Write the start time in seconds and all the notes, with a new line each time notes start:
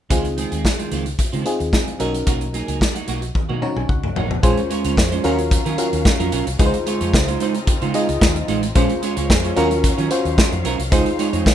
0.10 C#2 D#3 G#3 C4 D#4 F4 G#4, kick, closed hi-hat
0.25 closed hi-hat
0.37 D#3 G#3 C4 G#4, closed hi-hat
0.51 D#2 D#3 G#3 C4 G#4, closed hi-hat
0.64 muted clean electric guitar stroke, kick, snare
0.78 D#3 G#3 C4 F4, closed hi-hat
0.91 C#2 D#3 G#3 C4 F4, closed hi-hat
1.06 muted clean electric guitar stroke, closed hi-hat
1.18 muted clean electric guitar stroke, muted fingered electric bass stroke, kick, closed hi-hat
1.32 C#3 D#3 G#3 C4 F4, closed hi-hat
1.45 C4 D#4 F4 G#4, muted clean electric guitar stroke, closed hi-hat
1.59 D#2, muted clean electric guitar stroke, closed hi-hat
1.73 kick, snare
1.87 muted clean electric guitar stroke, closed hi-hat
1.99 B1 F#3 A#3 C#4 D#4 F#4 A#4, closed hi-hat
2.14 muted clean electric guitar stroke, closed hi-hat
2.26 B1 F#3 A#3 D#4 F#4, kick, closed hi-hat
2.41 closed hi-hat
2.53 F#3 A#3 D#4 G#4, closed hi-hat
2.67 C#2 F#3 A#3 D#4 G#4, closed hi-hat
2.80 muted clean electric guitar stroke, kick, snare
2.94 F#3 A#3 D#4 F#4, closed hi-hat
3.07 B1 F#3 A#3 D#4 F#4, closed hi-hat
3.22 muted clean electric guitar stroke, closed hi-hat
3.35 muted clean electric guitar stroke, muted fingered electric bass stroke, kick, high tom
3.49 B2 F#3 A#3 D#4 F#4, high tom
3.62 C#4 D#4 F#4 C#5 A#5, muted clean electric guitar stroke, mid tom
3.76 B1 G#5, muted clean electric guitar stroke, mid tom
3.89 C#2 F#5, kick
4.03 muted clean electric guitar stroke, mid tom
4.16 A1 F#3 A#3 D#4 F#4, floor tom
4.30 muted clean electric guitar stroke, floor tom
4.43 A#1 G#3 A#3 C#4 F4 G#4 C5, kick, closed hi-hat
4.58 closed hi-hat
4.70 G#3 C#4 F4 C#5, closed hi-hat
4.84 C#2 G#3 C#4 F4 C#5, closed hi-hat
4.97 F2, muted clean electric guitar stroke, kick, snare
5.12 G#3 C#4 F4 C5, closed hi-hat
5.24 D#2 D#3 F#3 C#4 F4 F#4 A#4 F5, closed hi-hat
5.39 muted clean electric guitar stroke, closed hi-hat
5.51 muted clean electric guitar stroke, kick, closed hi-hat
5.65 D#3 F#3 C#4 F4 A#4, closed hi-hat
5.78 C#4 F4 F#4 A#4, muted clean electric guitar stroke, closed hi-hat
5.93 D#2, muted clean electric guitar stroke, closed hi-hat
6.05 muted clean electric guitar stroke, kick, snare
6.20 F2 F#3 C#4 F4 A#4, closed hi-hat
6.32 B1 F#3 C#4 F4 A#4, closed hi-hat
6.47 C2, muted clean electric guitar stroke, closed hi-hat
6.59 C#2 C#3 G#3 C4 D#4 F4 G#4 B4 C5, kick, closed hi-hat
6.66 C5
6.74 closed hi-hat
6.86 G#3 D#4 F4 C#5, closed hi-hat
7.00 F2 G#3 D#4 F4 C#5, closed hi-hat
7.13 C#2, muted clean electric guitar stroke, kick, snare
7.27 G#3 D#4 F4 C5, closed hi-hat
7.40 G#3 D#4 F4 C5, closed hi-hat
7.55 muted clean electric guitar stroke, closed hi-hat
7.67 muted fingered electric bass stroke, muted clean electric guitar stroke, kick, closed hi-hat
7.82 C#3 G#3 D#4 F4 C5, closed hi-hat
7.94 G#3 D#4 F4 G#4 C5 D#5, closed hi-hat
8.08 C#2, muted clean electric guitar stroke, closed hi-hat
8.21 D#2, kick, snare
8.35 muted clean electric guitar stroke, closed hi-hat
8.48 A1 G#3 D#4 F4 C5, closed hi-hat
8.63 muted clean electric guitar stroke, closed hi-hat
8.75 A#1 G#3 A#3 C#4 F4 G#4 C5, kick, closed hi-hat
8.90 closed hi-hat
9.02 G#3 C#4 F4 C#5, closed hi-hat
9.16 C#2 G#3 C#4 F4 C#5, closed hi-hat
9.30 F2, muted clean electric guitar stroke, kick, snare
9.43 G#3 C#4 F4 C5, closed hi-hat
9.56 D#2 D#3 F#3 C#4 F4 F#4 A#4 F5, closed hi-hat
9.71 muted clean electric guitar stroke, closed hi-hat
9.83 muted clean electric guitar stroke, kick, closed hi-hat
9.98 D#3 F#3 C#4 F4 A#4, closed hi-hat
10.10 C#4 F4 F#4 C5, muted clean electric guitar stroke, closed hi-hat
10.25 D#2, muted clean electric guitar stroke, closed hi-hat
10.38 kick, snare
10.52 F2, muted clean electric guitar stroke, closed hi-hat
10.64 B1 F#3 C#4 F4 A#4, closed hi-hat
10.79 C2, muted clean electric guitar stroke, closed hi-hat
10.91 C#2 C#3 G#3 C4 D#4 F4 G#4 C5, kick, closed hi-hat
11.06 closed hi-hat
11.19 G#3 D#4 F4 C#5, closed hi-hat
11.33 F2 G#3 D#4 F4 C#5, closed hi-hat
11.46 C#2, muted clean electric guitar stroke, kick, snare